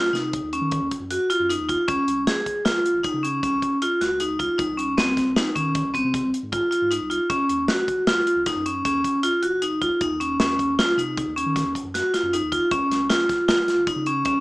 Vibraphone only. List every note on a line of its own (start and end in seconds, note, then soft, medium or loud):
0.00 0.11 F4 medium
0.13 0.47 D#4 medium
0.53 0.87 C#4 medium
1.10 1.27 F#4 medium
1.30 1.47 F4 medium
1.50 1.66 D#4 medium
1.69 1.85 F4 medium
1.88 2.22 C#4 medium
2.27 2.61 G#4 medium
2.65 2.99 F4 medium
3.04 3.21 D#4 medium
3.23 3.40 C#4 medium
3.43 3.77 C#4 medium
3.82 3.99 F4 medium
4.01 4.18 F#4 medium
4.20 4.37 D#4 medium
4.39 4.56 F4 medium
4.58 4.75 D#4 medium
4.78 4.95 C#4 medium
4.98 5.31 C4 medium
5.36 5.53 D#4 medium
5.55 5.89 C#4 medium
5.94 6.28 C4 medium
6.52 6.69 F4 medium
6.71 6.88 F4 medium
6.91 7.08 D#4 medium
7.10 7.27 F4 medium
7.30 7.63 C#4 medium
7.68 8.02 F#4 medium
8.07 8.41 F4 medium
8.47 8.63 D#4 medium
8.66 8.82 C#4 medium
8.85 9.19 C#4 medium
9.23 9.40 F4 medium
9.43 9.59 F#4 medium
9.62 9.79 D#4 medium
9.82 9.98 F4 medium
10.01 10.18 D#4 medium
10.20 10.37 C#4 medium
10.40 10.73 C#4 medium
10.79 10.95 F4 medium
10.98 11.31 D#4 medium
11.36 11.70 C#4 medium
11.94 12.11 F#4 medium
12.14 12.30 F4 medium
12.33 12.50 D#4 medium
12.52 12.69 F4 medium
12.72 13.05 C#4 medium
13.10 13.44 F4 medium
13.48 13.82 F4 medium
13.88 14.04 D#4 medium
14.06 14.23 C#4 medium
14.26 14.40 C#4 medium